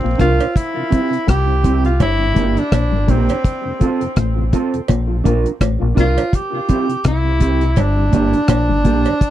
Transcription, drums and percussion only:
0.19 kick medium
0.19 cross-stick medium
0.19 closed hi-hat medium
0.40 closed hi-hat medium
0.40 cowbell medium
0.56 kick loud
0.56 closed hi-hat loud
0.92 kick loud
0.92 closed hi-hat medium
1.13 closed hi-hat soft
1.28 kick loud
1.28 cross-stick loud
1.28 closed hi-hat medium
1.64 kick medium
1.64 closed hi-hat medium
1.85 closed hi-hat soft
2.00 kick loud
2.00 closed hi-hat medium
2.00 cowbell medium
2.36 kick medium
2.36 closed hi-hat medium
2.57 closed hi-hat soft
2.72 kick loud
2.72 cross-stick loud
2.72 closed hi-hat loud
2.72 cowbell medium
3.08 kick medium
3.08 closed hi-hat medium
3.29 closed hi-hat medium
3.29 cowbell medium
3.45 kick loud
3.45 closed hi-hat medium
3.81 kick medium
3.81 closed hi-hat medium
4.01 closed hi-hat medium
4.16 kick loud
4.16 cross-stick loud
4.16 closed hi-hat loud
4.53 kick medium
4.53 closed hi-hat medium
4.74 closed hi-hat soft
4.88 kick loud
4.88 closed hi-hat medium
4.88 cowbell medium
5.25 kick medium
5.25 closed hi-hat medium
5.46 closed hi-hat soft
5.61 kick loud
5.61 cross-stick loud
5.61 closed hi-hat loud
5.61 cowbell medium
5.97 kick medium
5.97 cross-stick medium
5.97 closed hi-hat medium
6.18 closed hi-hat medium
6.18 cowbell medium
6.33 kick loud
6.33 closed hi-hat medium
6.69 kick loud
6.69 closed hi-hat medium
6.89 closed hi-hat medium
7.04 kick loud
7.04 cross-stick loud
7.04 closed hi-hat medium
7.40 kick medium
7.40 closed hi-hat medium
7.61 closed hi-hat medium
7.76 kick loud
7.76 closed hi-hat medium
7.76 cowbell medium
8.13 kick medium
8.13 closed hi-hat medium
8.33 closed hi-hat medium
8.48 kick loud
8.48 cross-stick loud
8.48 closed hi-hat loud
8.48 cowbell medium
8.85 kick medium
8.85 closed hi-hat medium
9.05 closed hi-hat medium
9.05 cowbell medium
9.21 kick loud
9.21 closed hi-hat loud

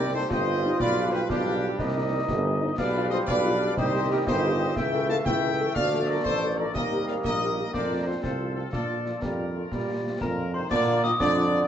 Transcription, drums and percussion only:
0.31 concert bass drum medium
0.31 snare medium
0.80 concert bass drum medium
0.80 snare medium
1.13 snare medium
1.30 concert bass drum loud
1.30 snare medium
1.79 concert bass drum medium
1.79 snare medium
2.28 concert bass drum loud
2.28 snare medium
2.78 concert bass drum medium
2.78 snare medium
2.78 crash medium
3.11 snare medium
3.28 concert bass drum medium
3.28 snare medium
3.77 concert bass drum medium
3.77 snare medium
4.27 concert bass drum loud
4.27 snare medium
4.76 concert bass drum medium
4.76 snare medium
5.09 snare medium
5.26 concert bass drum loud
5.26 snare medium
5.76 concert bass drum medium
5.76 snare medium
6.25 concert bass drum medium
6.25 snare medium
6.75 concert bass drum loud
6.75 snare medium
6.75 crash soft
7.08 snare medium
7.24 concert bass drum medium
7.24 snare medium
7.74 concert bass drum medium
7.74 snare medium
8.24 concert bass drum medium
8.24 snare medium
8.73 concert bass drum medium
8.73 snare medium
9.06 snare medium
9.22 concert bass drum medium
9.22 snare medium
9.72 concert bass drum medium
9.72 snare medium
10.21 concert bass drum medium
10.21 snare medium
10.71 concert bass drum medium
10.71 snare medium
10.71 crash medium
11.04 snare medium
11.20 concert bass drum loud
11.20 snare loud

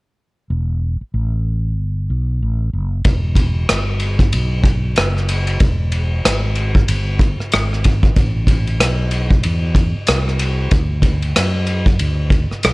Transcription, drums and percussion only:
3.05 kick loud
3.05 ride medium
3.35 kick medium
3.35 ride medium
3.69 cross-stick loud
3.69 hi-hat pedal medium
3.69 ride medium
4.00 ride soft
4.19 kick medium
4.19 ride soft
4.33 ride medium
4.64 kick medium
4.64 ride medium
4.96 cross-stick loud
4.96 hi-hat pedal soft
4.96 ride medium
5.17 cross-stick soft
5.29 ride medium
5.47 ride soft
5.60 kick loud
5.60 ride medium
5.92 ride medium
6.25 cross-stick loud
6.25 hi-hat pedal medium
6.25 ride medium
6.55 ride soft
6.75 kick medium
6.88 ride medium
7.19 kick medium
7.19 ride medium
7.40 cross-stick soft
7.52 cross-stick loud
7.52 hi-hat pedal soft
7.52 ride medium
7.73 cross-stick soft
7.84 kick medium
7.84 ride medium
8.03 kick loud
8.03 cross-stick soft
8.16 kick loud
8.16 ride medium
8.47 kick medium
8.47 ride medium
8.67 ride soft
8.80 cross-stick medium
8.80 hi-hat pedal medium
8.80 ride medium
9.11 ride soft
9.30 kick medium
9.43 ride medium
9.75 kick medium
9.75 ride medium
10.07 cross-stick loud
10.07 hi-hat pedal soft
10.07 ride medium
10.28 cross-stick soft
10.39 ride medium
10.71 kick loud
10.71 ride medium
11.02 kick medium
11.02 ride medium
11.22 ride soft
11.36 cross-stick medium
11.36 hi-hat pedal medium
11.36 ride medium
11.67 ride soft
11.86 kick medium
11.86 ride soft
11.99 ride medium
12.30 kick medium
12.30 ride soft
12.51 cross-stick soft
12.63 cross-stick loud
12.63 hi-hat pedal soft
12.63 ride medium

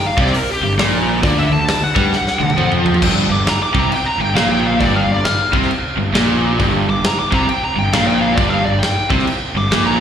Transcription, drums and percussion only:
0.18 kick loud
0.27 snare soft
0.34 open hi-hat medium
0.79 snare loud
0.79 open hi-hat medium
1.23 kick loud
1.23 open hi-hat medium
1.68 snare loud
1.68 open hi-hat medium
1.96 kick loud
2.13 snare medium
2.27 snare medium
2.41 high tom medium
2.50 high tom medium
2.58 mid tom medium
2.72 mid tom medium
2.86 floor tom loud
2.94 floor tom medium
3.02 kick loud
3.02 crash loud
3.02 crash medium
3.47 snare loud
3.47 crash medium
3.75 kick loud
3.92 crash medium
4.36 snare loud
4.36 crash medium
4.80 kick medium
4.80 crash medium
5.25 snare loud
5.25 crash soft
5.53 kick loud
5.62 snare soft
5.71 crash medium
6.15 snare loud
6.15 crash medium
6.60 kick loud
6.60 crash medium
7.04 snare loud
7.04 crash medium
7.32 kick loud
7.49 crash medium
7.93 snare loud
7.93 crash medium
8.38 kick loud
8.38 crash medium
8.82 snare loud
8.82 crash medium
9.10 kick loud
9.19 snare soft
9.27 crash medium
9.71 snare loud
9.71 crash medium

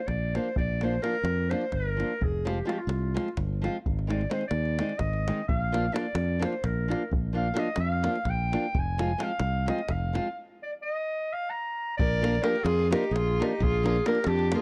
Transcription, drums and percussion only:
0.08 davul high soft
0.08 davul low soft
0.35 davul high medium
0.56 davul low medium
0.81 davul high medium
1.04 davul high medium
1.25 davul high medium
1.51 davul high medium
1.61 davul high soft
1.72 davul high soft
1.72 davul low medium
2.00 davul high soft
2.22 davul low medium
2.47 davul high medium
2.69 davul high medium
2.89 davul high medium
3.17 davul high medium
3.28 davul high soft
3.37 davul high medium
3.37 davul low medium
3.64 davul high soft
3.86 davul low medium
3.99 davul high soft
4.10 davul high medium
4.21 davul high soft
4.31 davul high medium
4.41 davul high soft
4.51 davul high medium
4.65 davul high soft
4.79 davul high medium
4.89 davul high soft
4.99 davul high medium
4.99 davul low medium
5.13 davul high soft
5.28 davul high medium
5.49 davul low medium
5.74 davul high medium
5.96 davul high medium
6.15 davul high medium
6.42 davul high medium
6.53 davul high soft
6.64 davul high medium
6.64 davul low medium
6.92 davul high medium
7.13 davul low medium
7.57 davul high medium
7.76 davul high medium
8.04 davul high medium
8.16 davul high soft
8.25 davul high medium
8.25 davul low medium
8.53 davul high medium
8.75 davul low medium
8.99 davul high medium
9.20 davul high medium
9.40 davul high medium
9.68 davul high medium
9.79 davul high soft
9.89 davul high medium
9.89 davul low soft
10.15 davul high medium
11.99 davul low medium
12.24 davul high medium
12.35 davul high soft
12.44 davul high medium
12.56 davul high soft
12.66 davul high medium
12.79 davul high soft
12.93 davul high medium
13.04 davul high soft
13.16 davul high medium
13.42 davul high medium
13.63 davul low medium
13.86 davul high medium
13.96 davul high soft
14.06 davul high medium
14.15 davul high soft
14.24 davul high medium
14.39 davul high soft
14.52 davul high medium

